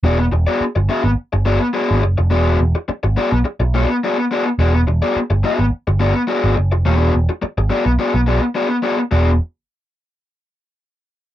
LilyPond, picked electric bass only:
\new Staff \with { instrumentName = "Picked electric bass" } { \clef bass \time 4/4 \key e \mixolydian \tempo 4 = 106 e,,8 e,,16 r8 g,,16 r16 gis,,16 r16 g,,8 r8 gis,,16 fis,,16 f,,16 | e,,8 e,,16 r8 gis,,16 r16 b,,16 r16 b,,8 r4 r16 | e,,8 e,,16 r8 g,,16 r16 gis,,16 r16 g,,8 r8 gis,,16 fis,,16 f,,16 | e,,8 e,,16 r8 gis,,16 r16 b,,16 r16 b,,8 r4 r16 |
e,,8 r2. r8 | }